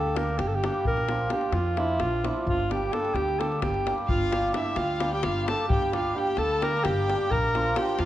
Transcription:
0.00 0.40 D2 medium
0.00 0.13 G3 medium
0.00 0.18 A4 medium
0.14 0.62 G3 medium
0.14 0.32 A#3 soft
0.14 0.32 D4 medium
0.14 0.32 G4 medium
0.14 0.40 A#4 medium
0.14 davul high medium
0.29 davul high soft
0.38 0.67 G1 medium
0.38 0.49 G4 medium
0.38 davul high medium
0.48 0.57 A4 medium
0.55 0.86 G4 medium
0.63 0.91 G3 medium
0.63 0.80 A#3 medium
0.63 0.80 D4 medium
0.63 0.80 G4 medium
0.63 davul high medium
0.74 davul high soft
0.85 1.26 A#1 medium
0.85 1.29 A#4 loud
0.85 davul low medium
0.97 davul high soft
1.08 1.30 F3 medium
1.08 1.25 A#3 soft
1.08 1.26 D4 soft
1.08 1.26 F4 medium
1.08 davul high medium
1.30 1.75 F3 medium
1.30 1.47 A#3 medium
1.30 1.47 D4 soft
1.30 1.48 F4 medium
1.30 1.55 G4 medium
1.30 davul high medium
1.41 davul high soft
1.52 2.01 F2 medium
1.52 1.80 F4 medium
1.52 davul high medium
1.76 2.22 F3 medium
1.76 1.94 A#3 medium
1.76 1.94 D4 medium
1.76 2.03 E4 medium
1.76 1.95 F4 medium
1.76 davul high medium
1.89 davul high soft
2.00 2.28 A#1 medium
2.00 2.27 F4 medium
2.00 davul high medium
2.24 2.52 F3 medium
2.24 2.41 A#3 medium
2.24 2.41 D4 medium
2.24 2.48 E4 medium
2.24 2.41 F4 medium
2.24 davul high medium
2.36 davul high soft
2.46 2.87 G1 medium
2.46 2.73 F4 medium
2.46 davul low medium
2.60 davul high soft
2.69 2.90 G3 medium
2.69 2.86 A#3 soft
2.69 2.86 D4 soft
2.69 2.87 G4 medium
2.69 2.95 G4 medium
2.69 davul high medium
2.83 davul high soft
2.91 3.38 G3 medium
2.91 3.08 A#3 soft
2.91 3.09 D4 soft
2.91 3.09 G4 medium
2.91 3.16 A4 medium
2.91 davul high medium
3.05 davul high soft
3.14 3.63 D2 medium
3.14 3.41 G4 medium
3.14 davul high medium
3.28 davul high soft
3.39 3.85 G3 medium
3.39 3.56 A#3 soft
3.39 3.56 D4 medium
3.39 3.56 G4 medium
3.39 3.61 A4 medium
3.39 davul high medium
3.52 davul high soft
3.62 3.90 G1 medium
3.62 3.96 G4 medium
3.62 davul high medium
3.62 davul low medium
3.74 davul high soft
3.86 4.14 G3 medium
3.86 4.03 A#3 medium
3.86 4.03 D4 medium
3.86 4.03 G4 medium
3.86 davul high medium
3.98 davul high soft
4.07 4.49 G1 medium
4.07 4.51 F4 medium
4.07 4.50 F5 medium
4.07 davul low medium
4.21 davul high soft
4.31 4.51 G3 medium
4.31 4.48 A#3 medium
4.31 4.48 D4 medium
4.31 4.49 G4 medium
4.31 davul high medium
4.52 4.99 G3 medium
4.52 4.69 A#3 medium
4.52 4.70 D4 medium
4.52 4.77 E4 medium
4.52 4.70 G4 medium
4.52 4.78 E5 medium
4.52 davul high medium
4.66 davul high soft
4.75 5.25 D2 medium
4.75 5.12 F4 medium
4.75 5.12 F5 medium
4.75 davul high medium
5.00 5.44 G3 medium
5.00 5.17 A#3 medium
5.00 5.17 D4 medium
5.00 5.17 G4 medium
5.00 davul high medium
5.12 5.26 G4 medium
5.12 5.25 G5 medium
5.12 davul high soft
5.23 5.52 G1 medium
5.23 5.48 F4 medium
5.23 5.47 F5 medium
5.23 davul high medium
5.45 5.91 G3 medium
5.45 5.63 A#3 medium
5.45 5.63 D4 medium
5.45 5.64 G4 medium
5.45 5.68 A4 medium
5.45 5.68 A5 medium
5.45 davul high medium
5.60 davul high soft
5.68 6.10 G1 medium
5.68 5.91 G4 medium
5.68 5.92 G5 medium
5.68 davul low medium
5.82 davul high soft
5.92 6.13 G3 medium
5.92 6.09 A#3 soft
5.92 6.09 D4 medium
5.92 6.17 F4 medium
5.92 6.09 G4 medium
5.92 davul high medium
5.97 6.19 F5 medium
6.15 6.60 G3 medium
6.15 6.31 A#3 medium
6.15 6.32 D4 medium
6.15 6.40 G4 medium
6.15 6.32 G4 medium
6.15 6.39 G5 medium
6.27 davul high soft
6.37 6.86 D2 medium
6.37 6.64 A4 loud
6.37 6.65 A5 medium
6.37 davul high medium
6.61 7.07 G3 medium
6.61 6.78 A#3 medium
6.61 6.78 D4 medium
6.61 6.78 G4 medium
6.61 6.85 A#4 loud
6.61 6.87 A#5 medium
6.61 davul high medium
6.73 davul high soft
6.84 7.13 G1 medium
6.84 7.33 G4 loud
6.84 7.34 G5 medium
6.84 davul high medium
7.08 7.36 G3 medium
7.08 7.25 A#3 medium
7.08 7.25 D4 medium
7.08 7.26 G4 medium
7.08 davul high medium
7.21 davul high soft
7.31 7.72 A#1 medium
7.31 7.79 A#4 loud
7.31 7.79 A#5 medium
7.31 davul low medium
7.44 davul high soft
7.54 7.75 F3 medium
7.54 7.70 A#3 medium
7.54 7.71 D4 medium
7.54 7.71 F4 medium
7.54 davul high medium
7.76 8.05 F3 medium
7.76 7.93 A#3 medium
7.76 7.93 D4 medium
7.76 7.93 F4 medium
7.76 8.01 G4 medium
7.76 8.00 G5 medium
7.76 davul high medium
7.88 davul high soft
7.98 8.05 F2 medium
7.98 8.05 F4 medium
7.98 8.05 F5 medium
7.98 davul high medium

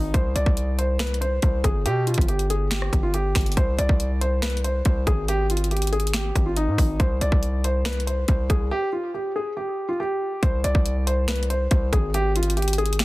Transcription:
0.00 0.13 G#1 loud
0.00 0.11 D#4 medium
0.14 0.35 C2 loud
0.14 0.31 C5 medium
0.14 kick loud
0.14 closed hi-hat medium
0.35 0.46 C2 loud
0.35 0.76 D5 medium
0.35 closed hi-hat medium
0.46 1.39 C2 loud
0.46 kick medium
0.57 closed hi-hat medium
0.79 0.95 C5 medium
0.79 closed hi-hat medium
0.99 1.16 B4 medium
0.99 finger snap medium
0.99 snare loud
0.99 closed hi-hat medium
1.07 closed hi-hat medium
1.14 closed hi-hat medium
1.21 1.38 C5 medium
1.21 closed hi-hat medium
1.42 1.63 C2 loud
1.42 1.59 C5 medium
1.42 kick medium
1.42 closed hi-hat medium
1.64 1.87 G1 loud
1.64 1.81 G#4 medium
1.64 kick loud
1.64 closed hi-hat medium
1.85 2.16 B2 loud
1.85 2.02 G4 loud
1.85 closed hi-hat medium
2.07 2.23 F4 medium
2.07 closed hi-hat soft
2.14 2.90 G1 loud
2.14 kick medium
2.14 closed hi-hat medium
2.21 closed hi-hat medium
2.28 2.45 G4 medium
2.28 closed hi-hat medium
2.39 closed hi-hat soft
2.50 2.67 G#4 medium
2.50 closed hi-hat medium
2.71 3.01 G4 medium
2.71 finger snap medium
2.71 snare loud
2.71 closed hi-hat medium
2.82 cross-stick loud
2.93 3.34 G1 loud
2.93 kick medium
2.93 closed hi-hat medium
3.03 3.11 F4 medium
3.14 3.54 G4 medium
3.14 closed hi-hat medium
3.35 3.56 G1 loud
3.35 finger snap medium
3.35 kick loud
3.35 snare loud
3.35 closed hi-hat medium
3.41 closed hi-hat medium
3.46 closed hi-hat medium
3.52 closed hi-hat medium
3.57 3.78 C2 loud
3.57 3.74 C5 medium
3.57 kick loud
3.57 closed hi-hat medium
3.78 3.89 C2 loud
3.78 4.19 D5 medium
3.78 closed hi-hat medium
3.89 4.82 C2 loud
3.89 kick medium
4.00 closed hi-hat medium
4.21 4.38 C5 medium
4.21 closed hi-hat medium
4.42 4.59 B4 medium
4.42 finger snap medium
4.42 snare loud
4.42 closed hi-hat medium
4.50 closed hi-hat medium
4.57 closed hi-hat medium
4.64 4.81 C5 medium
4.64 closed hi-hat medium
4.85 5.06 C2 loud
4.85 5.02 C5 medium
4.85 kick loud
4.85 closed hi-hat medium
5.07 6.31 G#1 loud
5.07 5.24 G#4 medium
5.07 kick loud
5.07 closed hi-hat medium
5.28 5.45 G4 loud
5.28 closed hi-hat medium
5.50 5.67 F4 medium
5.50 closed hi-hat medium
5.57 closed hi-hat medium
5.64 closed hi-hat medium
5.71 5.88 G4 medium
5.71 closed hi-hat soft
5.77 closed hi-hat medium
5.82 closed hi-hat medium
5.87 closed hi-hat medium
5.93 6.09 G#4 medium
5.93 closed hi-hat soft
6.00 closed hi-hat medium
6.07 closed hi-hat medium
6.14 6.44 G4 medium
6.14 finger snap medium
6.14 snare loud
6.14 closed hi-hat medium
6.36 6.69 G#1 loud
6.36 kick medium
6.36 closed hi-hat medium
6.46 6.54 F4 medium
6.57 6.97 D#4 medium
6.57 closed hi-hat medium
6.68 6.78 G#2 loud
6.78 6.99 G#1 loud
6.78 kick loud
6.78 open hi-hat medium
7.00 7.20 C2 loud
7.00 7.16 C5 medium
7.00 kick loud
7.00 closed hi-hat medium
7.21 7.32 C2 loud
7.21 7.62 D5 medium
7.21 closed hi-hat medium
7.32 8.25 C2 loud
7.32 kick medium
7.43 closed hi-hat medium
7.64 7.81 C5 medium
7.64 closed hi-hat medium
7.85 8.02 B4 medium
7.85 finger snap medium
7.85 snare loud
7.85 closed hi-hat medium
7.93 closed hi-hat medium
8.00 closed hi-hat medium
8.07 8.24 C5 medium
8.07 closed hi-hat medium
8.28 8.49 C2 loud
8.28 8.45 C5 medium
8.28 kick medium
8.28 closed hi-hat medium
8.50 8.70 C2 loud
8.50 8.66 G#4 medium
8.50 kick loud
8.50 closed hi-hat medium
8.71 8.88 G4 loud
8.93 9.09 F4 medium
9.14 9.31 G4 medium
9.36 9.52 G#4 medium
9.57 9.87 G4 medium
9.89 9.97 F4 medium
10.00 10.40 G4 medium
10.43 10.63 C2 loud
10.43 10.59 C5 medium
10.43 kick loud
10.43 closed hi-hat medium
10.64 10.74 C2 loud
10.64 11.04 D5 medium
10.64 closed hi-hat medium
10.75 11.67 C2 loud
10.75 kick loud
10.86 closed hi-hat medium
11.07 11.23 C5 medium
11.07 closed hi-hat medium
11.28 11.45 B4 medium
11.28 finger snap medium
11.28 snare loud
11.28 closed hi-hat medium
11.36 closed hi-hat medium
11.43 closed hi-hat medium
11.50 11.66 C5 medium
11.50 closed hi-hat medium
11.71 11.92 C2 loud
11.71 11.88 C5 medium
11.71 kick loud
11.71 closed hi-hat medium
11.93 13.05 G#1 loud
11.93 12.09 G#4 medium
11.93 kick loud
11.93 closed hi-hat medium
12.14 12.31 G4 loud
12.14 closed hi-hat medium
12.36 12.53 F4 medium
12.36 closed hi-hat medium
12.43 closed hi-hat medium
12.50 closed hi-hat medium
12.57 12.73 G4 medium
12.57 closed hi-hat soft
12.62 closed hi-hat medium
12.68 closed hi-hat medium
12.73 closed hi-hat medium
12.78 12.95 G#4 medium
12.78 closed hi-hat soft
12.86 closed hi-hat medium
12.93 closed hi-hat medium
12.99 13.05 G4 medium
12.99 finger snap loud
12.99 snare loud
12.99 closed hi-hat medium

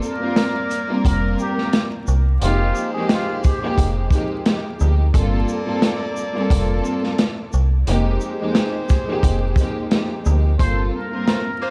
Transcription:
0.00 0.16 G2 loud
0.00 0.16 A#3 medium
0.00 2.04 A#3 medium
0.00 0.17 C4 medium
0.00 0.17 F4 medium
0.00 0.18 A4 loud
0.00 2.04 A#4 medium
0.00 1.01 A#4 medium
0.00 2.04 D5 loud
0.00 shaker medium
0.19 0.66 G2 loud
0.19 0.66 A#3 medium
0.19 0.67 C4 medium
0.19 0.67 F4 medium
0.19 0.68 A#4 loud
0.36 snare loud
0.36 closed hi-hat medium
0.71 closed hi-hat medium
0.71 shaker medium
0.88 2.13 G2 loud
0.88 2.13 A#3 loud
0.88 2.14 C4 medium
0.88 2.14 F4 medium
0.88 2.15 A#4 loud
1.05 1.36 F1 loud
1.05 1.36 A#4 medium
1.05 kick medium
1.05 closed hi-hat loud
1.39 1.89 G4 medium
1.39 shaker medium
1.58 snare soft
1.73 snare loud
1.73 closed hi-hat medium
2.07 2.39 C2 loud
2.07 shaker medium
2.41 2.73 F1 loud
2.41 2.89 F2 loud
2.41 4.76 G#3 medium
2.41 2.90 G#3 medium
2.41 2.90 A#3 medium
2.41 2.91 D#4 loud
2.41 2.91 F4 loud
2.41 4.76 G4 loud
2.41 2.91 G4 loud
2.41 4.76 C5 loud
2.41 closed hi-hat medium
2.76 shaker medium
2.93 3.40 F2 medium
2.93 3.40 G#3 medium
2.93 3.41 A#3 medium
2.93 3.41 D#4 medium
2.93 3.41 G4 loud
2.93 3.08 G#4 medium
3.09 3.40 F4 medium
3.09 snare loud
3.09 closed hi-hat medium
3.44 3.93 G4 medium
3.44 kick medium
3.44 closed hi-hat medium
3.44 shaker medium
3.61 4.07 F2 loud
3.61 4.08 G#3 medium
3.61 4.08 A#3 loud
3.61 4.08 D#4 medium
3.61 4.09 G4 loud
3.78 4.09 F1 loud
3.78 kick medium
3.78 closed hi-hat loud
4.11 4.43 F2 medium
4.11 4.44 G#3 medium
4.11 4.44 A#3 medium
4.11 4.44 D#4 medium
4.11 4.45 G4 loud
4.11 kick loud
4.11 closed hi-hat medium
4.11 shaker medium
4.45 4.76 F2 medium
4.45 4.76 G#3 medium
4.45 4.77 A#3 medium
4.45 4.78 D#4 medium
4.45 4.79 G4 medium
4.45 snare loud
4.45 closed hi-hat medium
4.77 5.10 F2 medium
4.77 5.10 G#3 medium
4.77 5.11 A#3 medium
4.77 5.11 D#4 medium
4.77 5.12 G4 medium
4.77 shaker medium
4.81 5.11 D2 medium
5.13 5.45 G1 loud
5.13 5.62 G2 loud
5.13 7.48 A#3 medium
5.13 5.62 A#3 medium
5.13 5.62 C4 medium
5.13 5.63 F4 loud
5.13 7.48 A4 medium
5.13 5.63 A4 loud
5.13 7.48 D5 loud
5.13 kick loud
5.13 closed hi-hat medium
5.48 shaker medium
5.65 6.12 G2 medium
5.65 6.12 A#3 medium
5.65 6.12 C4 medium
5.65 6.13 F4 medium
5.65 6.13 A4 loud
5.82 snare loud
5.82 closed hi-hat medium
6.17 shaker medium
6.34 7.59 G2 loud
6.34 7.59 A#3 loud
6.34 7.59 C4 medium
6.34 7.60 F4 medium
6.34 7.60 A4 loud
6.50 6.82 F1 loud
6.50 kick medium
6.50 closed hi-hat loud
6.85 shaker medium
7.04 snare soft
7.18 snare loud
7.18 closed hi-hat medium
7.53 7.84 C2 medium
7.53 shaker medium
7.87 8.18 F1 loud
7.87 8.35 F2 medium
7.87 10.22 G#3 medium
7.87 8.35 G#3 medium
7.87 8.36 A#3 medium
7.87 8.36 D#4 medium
7.87 10.22 G4 medium
7.87 8.36 G4 loud
7.87 10.22 C5 loud
7.87 closed hi-hat loud
8.21 shaker medium
8.40 8.85 F2 medium
8.40 8.86 G#3 medium
8.40 8.86 A#3 medium
8.40 8.87 D#4 medium
8.40 8.87 G4 loud
8.55 snare loud
8.55 closed hi-hat medium
8.89 kick medium
8.89 snare soft
8.89 closed hi-hat medium
8.89 shaker medium
9.06 9.53 F2 loud
9.06 9.53 G#3 medium
9.06 9.54 A#3 medium
9.06 9.54 D#4 medium
9.06 9.54 G4 loud
9.23 9.54 F1 loud
9.23 kick medium
9.23 closed hi-hat loud
9.56 9.89 F2 medium
9.56 9.89 G#3 medium
9.56 9.89 A#3 medium
9.56 9.90 D#4 medium
9.56 9.90 G4 loud
9.56 kick loud
9.56 closed hi-hat medium
9.56 shaker medium
9.91 10.21 F2 medium
9.91 10.22 G#3 medium
9.91 10.23 A#3 medium
9.91 10.23 D#4 medium
9.91 10.24 G4 medium
9.91 snare loud
9.91 closed hi-hat medium
10.22 10.57 D2 medium
10.22 10.55 F2 medium
10.22 10.56 G#3 medium
10.22 10.56 A#3 medium
10.22 10.57 D#4 medium
10.22 10.57 G4 medium
10.22 shaker medium
10.58 10.91 G1 loud
10.58 11.07 G2 medium
10.58 11.07 A#3 medium
10.58 11.08 C4 medium
10.58 11.08 F4 medium
10.58 11.09 A4 loud
10.58 10.90 C5 loud
10.58 kick loud
10.58 closed hi-hat medium
10.94 11.70 A#4 medium
11.10 11.57 G2 medium
11.10 11.57 A#3 medium
11.10 11.58 C4 medium
11.10 11.58 F4 medium
11.10 11.58 A#4 loud
11.27 11.43 A3 medium
11.27 11.43 F4 medium
11.27 11.43 C5 medium
11.27 snare loud
11.27 closed hi-hat medium
11.61 11.70 A#3 loud
11.61 11.70 F4 loud
11.61 11.70 C5 loud

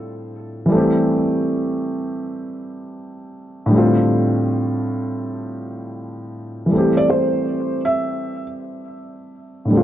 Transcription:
0.00 0.64 A2 medium
0.00 0.65 D3 medium
0.00 0.66 G3 medium
0.00 0.68 A3 medium
0.00 0.69 C4 medium
0.00 0.70 F4 medium
0.66 3.64 E3 medium
0.66 3.66 G3 medium
0.72 3.67 A3 medium
0.72 3.69 C4 medium
0.78 3.70 G4 medium
3.66 6.64 A2 medium
3.66 6.66 D3 medium
3.71 6.67 G3 medium
3.71 6.68 A3 medium
3.76 6.69 C4 medium
3.76 6.70 F4 medium
6.66 9.65 E3 medium
6.66 9.66 G3 medium
6.72 9.68 A3 medium
6.72 9.69 C4 medium
6.78 9.71 G4 medium
6.97 7.08 D5 medium
7.10 7.80 C5 medium
7.85 8.43 E5 medium
9.65 9.83 A2 medium
9.65 9.83 D3 medium
9.70 9.83 G3 medium
9.70 9.83 A3 medium
9.75 9.83 C4 medium
9.75 9.83 F4 medium

